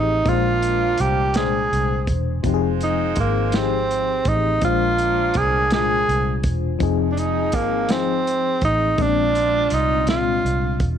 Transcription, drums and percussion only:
0.26 kick, closed hi-hat
0.62 closed hi-hat
0.98 closed hi-hat
1.34 snare, closed hi-hat
1.73 closed hi-hat
2.07 kick, closed hi-hat
2.44 kick, closed hi-hat
2.81 closed hi-hat
3.16 kick, closed hi-hat
3.52 snare, closed hi-hat
3.91 closed hi-hat
4.25 kick, closed hi-hat
4.61 kick, closed hi-hat
4.98 closed hi-hat
5.34 kick, closed hi-hat
5.70 snare, closed hi-hat
6.09 closed hi-hat
6.44 kick, closed hi-hat
6.80 kick, closed hi-hat
7.17 closed hi-hat
7.52 kick, closed hi-hat
7.89 snare, closed hi-hat
8.27 closed hi-hat
8.61 kick, closed hi-hat
8.98 kick, closed hi-hat
9.35 closed hi-hat
9.70 closed hi-hat
10.07 snare, closed hi-hat
10.46 closed hi-hat
10.80 kick, closed hi-hat

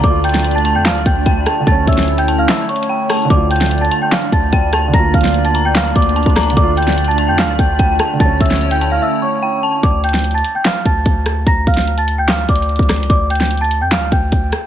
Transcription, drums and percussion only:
0.04 kick, closed hi-hat
0.24 closed hi-hat
0.29 closed hi-hat
0.34 snare, closed hi-hat
0.39 closed hi-hat
0.44 closed hi-hat
0.51 closed hi-hat
0.58 closed hi-hat
0.65 closed hi-hat
0.85 snare, clap, closed hi-hat
1.06 kick, closed hi-hat
1.26 kick, closed hi-hat
1.46 cross-stick, closed hi-hat
1.67 kick, closed hi-hat
1.87 kick, closed hi-hat
1.93 closed hi-hat
1.98 snare, closed hi-hat
2.03 closed hi-hat
2.08 closed hi-hat
2.18 closed hi-hat
2.28 closed hi-hat
2.49 snare, clap, closed hi-hat
2.69 closed hi-hat
2.76 closed hi-hat
2.83 closed hi-hat
3.09 cross-stick, open hi-hat
3.30 kick, closed hi-hat
3.51 closed hi-hat
3.56 closed hi-hat
3.61 snare, closed hi-hat
3.66 closed hi-hat
3.71 closed hi-hat
3.78 closed hi-hat
3.85 closed hi-hat
3.91 closed hi-hat
4.12 snare, clap, closed hi-hat
4.32 kick, closed hi-hat
4.53 kick, closed hi-hat
4.73 cross-stick, closed hi-hat
4.94 kick, closed hi-hat
5.14 kick, closed hi-hat
5.21 snare, closed hi-hat
5.28 closed hi-hat
5.34 closed hi-hat
5.45 closed hi-hat
5.55 closed hi-hat
5.75 snare, clap, closed hi-hat
5.96 kick, closed hi-hat
6.02 closed hi-hat
6.09 closed hi-hat
6.16 closed hi-hat
6.23 kick, closed hi-hat
6.30 closed hi-hat
6.36 cross-stick, snare, closed hi-hat, open hi-hat
6.43 closed hi-hat
6.50 closed hi-hat
6.57 kick, closed hi-hat
6.77 closed hi-hat
6.82 closed hi-hat
6.87 snare, closed hi-hat
6.93 closed hi-hat
6.98 closed hi-hat
7.04 closed hi-hat
7.11 closed hi-hat
7.18 closed hi-hat
7.39 snare, clap, closed hi-hat
7.59 kick, closed hi-hat
7.79 kick, closed hi-hat
7.99 cross-stick, closed hi-hat
8.20 kick, closed hi-hat
8.41 kick, closed hi-hat
8.46 closed hi-hat
8.51 snare, closed hi-hat
8.56 closed hi-hat
8.61 closed hi-hat
8.71 closed hi-hat
8.81 closed hi-hat
9.83 kick, closed hi-hat
10.04 closed hi-hat
10.09 closed hi-hat
10.14 snare, closed hi-hat
10.19 closed hi-hat
10.24 closed hi-hat
10.31 closed hi-hat
10.38 closed hi-hat
10.45 closed hi-hat
10.65 snare, clap, closed hi-hat
10.85 kick, closed hi-hat
11.06 kick, closed hi-hat
11.26 cross-stick, closed hi-hat
11.47 kick, closed hi-hat
11.67 kick, closed hi-hat
11.74 snare, closed hi-hat
11.81 closed hi-hat
11.87 closed hi-hat
11.98 closed hi-hat
12.08 closed hi-hat
12.28 snare, clap, closed hi-hat
12.49 kick, closed hi-hat
12.55 closed hi-hat
12.62 closed hi-hat
12.69 closed hi-hat
12.76 kick, closed hi-hat
12.83 closed hi-hat
12.89 cross-stick, snare, closed hi-hat, open hi-hat
12.96 closed hi-hat
13.03 closed hi-hat
13.10 kick, closed hi-hat
13.30 closed hi-hat
13.35 closed hi-hat
13.40 snare, closed hi-hat
13.46 closed hi-hat
13.51 closed hi-hat
13.57 closed hi-hat
13.64 closed hi-hat
13.71 closed hi-hat
13.92 snare, clap, closed hi-hat
14.12 kick, closed hi-hat
14.32 kick, closed hi-hat
14.52 cross-stick, closed hi-hat

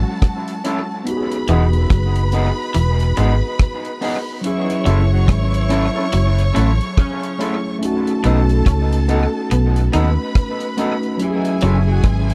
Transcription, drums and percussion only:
0.22 kick, cross-stick, closed hi-hat
0.48 closed hi-hat
0.65 closed hi-hat
1.07 closed hi-hat
1.32 closed hi-hat
1.48 closed hi-hat
1.73 closed hi-hat
1.90 kick, cross-stick, closed hi-hat
2.16 closed hi-hat
2.32 closed hi-hat
2.74 closed hi-hat
3.00 closed hi-hat
3.17 closed hi-hat
3.59 kick, cross-stick, closed hi-hat
3.85 closed hi-hat
4.02 open hi-hat
4.44 closed hi-hat
4.70 closed hi-hat
4.86 closed hi-hat
5.28 kick, cross-stick, closed hi-hat
5.54 closed hi-hat
5.70 cross-stick, closed hi-hat
6.13 closed hi-hat
6.38 closed hi-hat
6.56 closed hi-hat
6.81 closed hi-hat
6.97 kick, cross-stick, closed hi-hat
7.23 closed hi-hat
7.41 closed hi-hat
7.83 closed hi-hat
8.07 closed hi-hat
8.24 closed hi-hat
8.49 closed hi-hat
8.66 kick, cross-stick, closed hi-hat
8.93 closed hi-hat
9.09 closed hi-hat
9.51 closed hi-hat
9.76 closed hi-hat
9.93 closed hi-hat
10.35 kick, cross-stick, closed hi-hat
10.60 closed hi-hat
10.78 closed hi-hat
11.03 closed hi-hat
11.20 closed hi-hat
11.45 closed hi-hat
11.61 closed hi-hat
12.04 kick, cross-stick, closed hi-hat
12.30 closed hi-hat

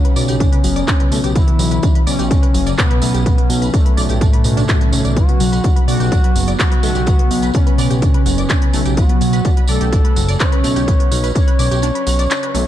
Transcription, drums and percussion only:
0.05 closed hi-hat
0.16 open hi-hat, tambourine
0.28 closed hi-hat, tambourine
0.40 kick, closed hi-hat, tambourine
0.53 closed hi-hat
0.64 open hi-hat, tambourine
0.76 closed hi-hat, tambourine
0.88 kick, clap, closed hi-hat, tambourine
1.00 closed hi-hat
1.12 open hi-hat, tambourine
1.24 closed hi-hat, tambourine
1.35 kick, closed hi-hat, tambourine
1.48 closed hi-hat
1.59 open hi-hat, tambourine
1.71 closed hi-hat, tambourine
1.83 kick, closed hi-hat, tambourine
1.95 closed hi-hat
2.07 open hi-hat, tambourine
2.19 closed hi-hat, tambourine
2.31 kick, closed hi-hat, tambourine
2.43 closed hi-hat
2.54 open hi-hat, tambourine
2.66 closed hi-hat, tambourine
2.78 kick, clap, closed hi-hat, tambourine
2.91 closed hi-hat
3.02 open hi-hat, tambourine
3.14 closed hi-hat, tambourine
3.26 kick, closed hi-hat, tambourine
3.38 closed hi-hat
3.50 open hi-hat, tambourine
3.62 closed hi-hat, tambourine
3.74 kick, closed hi-hat, tambourine
3.86 closed hi-hat
3.97 open hi-hat, tambourine
4.09 closed hi-hat, tambourine
4.21 kick, closed hi-hat, tambourine
4.33 closed hi-hat
4.44 open hi-hat, tambourine
4.57 closed hi-hat, tambourine
4.68 kick, clap, closed hi-hat, tambourine
4.81 closed hi-hat
4.93 open hi-hat, tambourine
5.05 closed hi-hat, tambourine
5.17 kick, closed hi-hat, tambourine
5.29 closed hi-hat
5.40 open hi-hat, tambourine
5.53 closed hi-hat, tambourine
5.64 kick, closed hi-hat, tambourine
5.76 closed hi-hat
5.88 open hi-hat, tambourine
6.00 closed hi-hat, tambourine
6.12 kick, closed hi-hat, tambourine
6.24 closed hi-hat
6.36 open hi-hat, tambourine
6.47 closed hi-hat, tambourine
6.59 kick, clap, closed hi-hat, tambourine
6.72 closed hi-hat
6.83 open hi-hat, tambourine
6.95 closed hi-hat, tambourine
7.06 kick, closed hi-hat, tambourine
7.19 closed hi-hat
7.31 open hi-hat, tambourine
7.42 closed hi-hat, tambourine
7.54 kick, closed hi-hat, tambourine
7.67 closed hi-hat
7.78 open hi-hat, tambourine
7.91 closed hi-hat, tambourine
8.02 kick, closed hi-hat, tambourine
8.14 closed hi-hat
8.26 open hi-hat, tambourine
8.38 closed hi-hat, tambourine
8.49 kick, clap, closed hi-hat, tambourine
8.62 closed hi-hat
8.73 open hi-hat, tambourine
8.85 closed hi-hat, tambourine
8.97 kick, closed hi-hat, tambourine
9.09 closed hi-hat
9.21 open hi-hat, tambourine
9.33 closed hi-hat, tambourine
9.45 kick, closed hi-hat, tambourine
9.57 closed hi-hat
9.68 open hi-hat, tambourine
9.81 closed hi-hat, tambourine
9.93 kick, closed hi-hat, tambourine
10.05 closed hi-hat
10.16 open hi-hat, tambourine
10.29 closed hi-hat, tambourine
10.40 kick, clap, closed hi-hat, tambourine
10.52 closed hi-hat
10.64 open hi-hat, tambourine
10.76 closed hi-hat, tambourine
10.88 kick, closed hi-hat, tambourine
11.00 closed hi-hat
11.12 open hi-hat, tambourine
11.24 closed hi-hat, tambourine
11.35 kick, closed hi-hat, tambourine
11.48 closed hi-hat
11.59 open hi-hat, tambourine
11.71 closed hi-hat, tambourine
11.82 closed hi-hat, tambourine
11.95 closed hi-hat
12.07 open hi-hat, tambourine
12.19 closed hi-hat, tambourine
12.31 clap, closed hi-hat, tambourine
12.43 closed hi-hat
12.55 open hi-hat, tambourine

